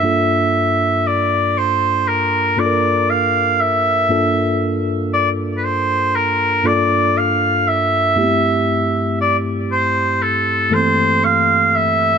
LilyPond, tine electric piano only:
\new Staff \with { instrumentName = "Tine electric piano" } { \time 4/4 \key g \dorian \tempo 4 = 59 <g, bes d' f' a'>4. r4 <g, bes d' f' a' bes'>4 r8 | <g, bes d' f' a'>4. r4 <g, bes d' f' a'>4 r8 | <g, a b c' e' g'>4. r4 <g, e a bes c' a'>4 r8 | }